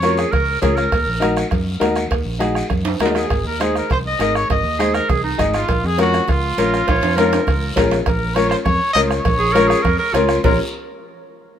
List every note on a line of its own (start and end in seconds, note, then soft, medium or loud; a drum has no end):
0.00 0.24 F2 medium
0.00 0.24 C#4 medium
0.00 0.24 F4 medium
0.00 0.19 F#4 medium
0.00 0.24 A#4 medium
0.00 0.18 C#5 loud
0.00 bombo rim medium
0.00 cowbell medium
0.00 high conga medium
0.00 short guiro medium
0.17 0.33 G#4 medium
0.17 bombo rim medium
0.17 short guiro medium
0.32 0.57 C#2 medium
0.32 0.61 A#4 loud
0.32 bombo low medium
0.32 bombo rim medium
0.32 cowbell medium
0.32 high conga soft
0.32 low conga medium
0.32 long guiro medium
0.61 0.86 C#2 medium
0.61 0.83 C#4 medium
0.61 0.83 F4 medium
0.61 0.78 G#4 medium
0.61 0.83 A#4 medium
0.61 bombo low medium
0.61 bombo rim medium
0.61 cowbell medium
0.61 high conga medium
0.61 low conga medium
0.61 short guiro medium
0.76 1.36 A#4 medium
0.76 bombo rim medium
0.76 short guiro medium
0.92 1.04 D#2 medium
0.92 bombo low medium
0.92 bombo rim medium
0.92 cowbell medium
0.92 long guiro medium
1.06 1.42 A#1 medium
1.20 1.42 D#4 medium
1.20 1.42 F#4 medium
1.20 1.43 A#4 medium
1.20 bombo rim medium
1.20 cowbell medium
1.20 high conga medium
1.20 short guiro medium
1.36 bombo rim medium
1.36 short guiro medium
1.51 1.76 F#2 medium
1.51 bombo low medium
1.51 bombo rim medium
1.51 cowbell medium
1.51 high conga soft
1.51 low conga medium
1.51 long guiro medium
1.80 2.05 D#2 medium
1.80 2.02 D#4 medium
1.80 2.02 F#4 medium
1.80 2.02 A#4 medium
1.80 bombo rim medium
1.80 cowbell medium
1.80 high conga medium
1.80 low timbale medium
1.80 short guiro medium
1.95 bombo rim medium
1.95 short guiro medium
2.10 2.23 D#2 medium
2.10 bombo low medium
2.10 bombo rim medium
2.10 cowbell loud
2.10 high conga soft
2.10 long guiro medium
2.25 2.61 A#1 medium
2.39 2.61 D#4 medium
2.39 2.61 F#4 medium
2.39 2.61 G#4 medium
2.39 bombo rim medium
2.39 cowbell medium
2.39 high conga medium
2.39 short guiro medium
2.55 bombo rim medium
2.55 short guiro medium
2.70 2.94 F#2 medium
2.70 bombo low medium
2.70 bombo rim medium
2.70 cowbell medium
2.70 high conga soft
2.70 low conga medium
2.70 long guiro medium
2.85 high timbale loud
3.00 3.24 D#2 medium
3.00 3.21 D#4 medium
3.00 3.21 F#4 medium
3.00 3.22 A#4 medium
3.00 bombo rim medium
3.00 cowbell medium
3.00 high conga medium
3.00 low conga medium
3.00 short guiro medium
3.06 low timbale loud
3.15 3.45 G#4 medium
3.15 bombo rim medium
3.15 low timbale medium
3.15 short guiro medium
3.30 3.42 G#1 medium
3.30 bombo low medium
3.30 bombo rim medium
3.30 cowbell medium
3.30 high conga soft
3.30 long guiro medium
3.44 3.80 D#2 medium
3.44 3.60 A#4 medium
3.60 3.81 D#4 medium
3.60 3.81 G#4 medium
3.60 3.75 G#4 medium
3.60 3.81 C5 medium
3.60 bombo rim medium
3.60 cowbell medium
3.60 high conga medium
3.60 short guiro medium
3.75 3.90 A#4 medium
3.75 bombo rim medium
3.75 short guiro medium
3.90 4.14 C2 medium
3.90 3.98 C5 medium
3.90 bombo low medium
3.90 bombo rim medium
3.90 cowbell medium
3.90 high conga soft
3.90 low conga medium
3.90 long guiro medium
4.06 4.20 D#5 medium
4.19 4.43 G#1 medium
4.19 4.40 D#4 medium
4.19 4.40 G#4 medium
4.19 4.41 A#4 medium
4.19 4.37 D#5 loud
4.19 bombo rim medium
4.19 cowbell medium
4.19 high conga medium
4.19 short guiro medium
4.35 4.50 C#5 medium
4.35 bombo rim medium
4.35 short guiro medium
4.50 4.62 G#1 medium
4.50 4.92 D#5 medium
4.50 bombo low medium
4.50 bombo rim medium
4.50 cowbell loud
4.50 high conga soft
4.50 low conga medium
4.50 long guiro medium
4.64 5.00 D#2 medium
4.79 5.00 D#4 medium
4.79 4.96 G#4 medium
4.79 5.00 G#4 medium
4.79 5.00 C5 medium
4.79 bombo rim medium
4.79 cowbell medium
4.79 high conga medium
4.79 short guiro medium
4.94 5.11 A#4 loud
4.94 bombo rim medium
4.94 short guiro medium
5.09 5.33 C2 medium
5.09 5.23 G#4 medium
5.09 bombo low medium
5.09 bombo rim medium
5.09 cowbell medium
5.09 high conga soft
5.09 low conga medium
5.09 long guiro medium
5.24 5.45 D#4 medium
5.38 5.63 G#1 loud
5.38 5.59 D#4 medium
5.38 5.59 G#4 medium
5.38 5.60 D#5 medium
5.38 bombo low medium
5.38 bombo rim medium
5.38 cowbell medium
5.38 high conga medium
5.38 low conga medium
5.38 short guiro medium
5.54 5.87 F4 medium
5.54 bombo rim medium
5.54 short guiro medium
5.69 5.81 A#1 medium
5.69 bombo low medium
5.69 bombo rim medium
5.69 cowbell medium
5.69 high conga soft
5.69 long guiro medium
5.84 6.19 F2 medium
5.84 6.00 G#4 loud
5.98 6.19 C#4 medium
5.98 6.19 F4 medium
5.98 6.32 F#4 loud
5.98 6.19 A#4 medium
5.98 bombo rim medium
5.98 cowbell medium
5.98 high conga medium
5.98 short guiro medium
6.13 bombo rim medium
6.13 short guiro medium
6.28 6.52 C#2 medium
6.28 7.78 F4 medium
6.28 bombo low medium
6.28 bombo rim medium
6.28 cowbell medium
6.28 high conga soft
6.28 low conga medium
6.28 long guiro medium
6.58 6.81 A#1 medium
6.58 6.79 C#4 medium
6.58 6.79 F4 medium
6.58 6.89 A#4 medium
6.58 6.79 A#4 medium
6.58 bombo rim medium
6.58 cowbell medium
6.58 high conga medium
6.58 short guiro medium
6.73 bombo rim medium
6.73 short guiro medium
6.87 7.00 A#1 medium
6.87 7.17 C#5 loud
6.87 bombo low medium
6.87 bombo rim medium
6.87 cowbell loud
6.87 high conga soft
6.87 high timbale medium
6.87 long guiro medium
7.02 7.38 F2 medium
7.02 high timbale medium
7.16 7.38 C#4 medium
7.16 7.39 F4 medium
7.16 7.76 A#4 medium
7.16 7.39 A#4 loud
7.16 bombo rim medium
7.16 cowbell medium
7.16 high conga medium
7.16 high timbale medium
7.16 short guiro medium
7.33 bombo rim medium
7.33 high timbale medium
7.33 short guiro medium
7.47 7.71 C#2 medium
7.47 bombo low medium
7.47 bombo rim medium
7.47 cowbell medium
7.47 high conga soft
7.47 low conga medium
7.47 long guiro medium
7.76 8.01 A#1 medium
7.76 7.97 C#4 medium
7.76 7.97 F4 medium
7.76 7.98 A#4 medium
7.76 bombo low medium
7.76 bombo rim medium
7.76 cowbell medium
7.76 high conga medium
7.76 low conga medium
7.76 low timbale loud
7.76 short guiro medium
7.91 bombo rim medium
7.91 low timbale medium
7.91 short guiro medium
8.06 8.54 A#1 medium
8.06 8.36 A#4 medium
8.06 bombo low medium
8.06 bombo rim medium
8.06 cowbell loud
8.06 high conga soft
8.06 low conga medium
8.06 long guiro medium
8.35 8.57 C#4 medium
8.35 8.57 F4 medium
8.35 8.57 A#4 medium
8.35 8.49 C#5 medium
8.35 bombo rim medium
8.35 cowbell medium
8.35 high conga medium
8.35 short guiro medium
8.49 8.56 C5 medium
8.49 bombo rim medium
8.49 short guiro medium
8.64 8.78 F2 medium
8.64 8.92 C#5 loud
8.64 bombo low medium
8.64 bombo rim medium
8.64 cowbell medium
8.64 high conga soft
8.64 low conga medium
8.64 long guiro medium
8.93 9.19 C#2 medium
8.93 9.16 C#4 medium
8.93 9.16 F4 medium
8.93 9.17 A#4 medium
8.93 9.00 D#5 loud
8.93 bombo rim medium
8.93 cowbell medium
8.93 high conga medium
8.93 short guiro medium
9.08 10.09 C#5 loud
9.08 bombo rim medium
9.08 short guiro medium
9.25 9.73 A#1 loud
9.25 bombo low medium
9.25 bombo rim medium
9.25 cowbell loud
9.25 high conga soft
9.25 low conga medium
9.25 long guiro medium
9.39 9.54 G#4 loud
9.53 9.76 C#4 medium
9.53 9.76 F4 medium
9.53 9.69 A#4 loud
9.53 9.76 A#4 loud
9.53 bombo rim medium
9.53 cowbell medium
9.53 high conga medium
9.53 short guiro medium
9.68 9.84 G#4 medium
9.68 bombo rim medium
9.68 short guiro medium
9.83 9.96 F2 medium
9.83 9.98 A#4 loud
9.83 bombo low medium
9.83 bombo rim medium
9.83 cowbell medium
9.83 high conga soft
9.83 low conga medium
9.83 long guiro medium
9.99 10.15 A#4 loud
10.13 10.38 C#2 loud
10.13 10.35 C#4 medium
10.13 10.43 F4 medium
10.13 10.35 F4 medium
10.13 10.36 A#4 loud
10.13 bombo rim medium
10.13 cowbell medium
10.13 high conga medium
10.13 short guiro medium
10.29 bombo rim medium
10.29 short guiro medium
10.44 10.58 A#1 medium
10.44 10.58 C#4 medium
10.44 10.58 F4 medium
10.44 10.58 A#4 medium
10.44 bombo low loud
10.44 low conga loud
10.44 low timbale loud
10.44 long guiro loud